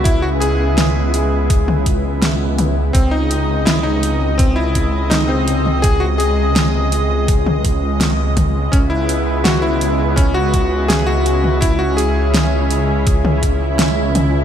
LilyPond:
<<
  \new Staff \with { instrumentName = "Electric grand piano" } { \time 4/4 \key cis \minor \tempo 4 = 83 e'16 fis'16 gis'2 r4. | bis16 dis'8. e'16 dis'8. bis16 e'8. dis'16 bis8. | gis'16 fis'16 gis'2 r4. | cis'16 e'8. fis'16 e'8. cis'16 fis'8. gis'16 fis'8. |
e'16 fis'16 gis'2 r4. | }
  \new Staff \with { instrumentName = "Analog synth pad" } { \time 4/4 \key cis \minor << { <cis gis e'>1 | <bis, dis''>1~ | <bis, dis''>1 | <cis e'>1~ |
<cis e'>1 | } \\ { b1 | gis1~ | gis1 | b1 |
cis'1 | } >> }
  \new Staff \with { instrumentName = "Detuned saw bass" } { \clef bass \time 4/4 \key cis \minor cis,1 | cis,1~ | cis,1 | cis,1~ |
cis,1 | }
  \new DrumStaff \with { instrumentName = "Drums" } \drummode { \time 4/4 <hh bd>8 hh8 <hh sn>8 hh8 <hh bd>16 toml16 <hh bd>8 <hh sn>8 <hh toml>8 | <hh bd>8 hh8 <hh sn>8 hh8 <hh bd>8 <hh bd>8 <hh sn>8 hh16 toml16 | <hh bd>8 hh8 <hh sn>8 hh8 <hh bd>16 toml16 <hh bd>8 <hh sn>8 <hh bd toml>8 | <hh bd>8 hh8 <hh sn>8 hh8 <hh bd>8 <hh bd>8 <hh sn>8 hh16 toml16 |
<hh bd>8 hh8 <hh sn>8 hh8 <hh bd>16 toml16 <hh bd>8 <hh sn>8 <hh toml>8 | }
>>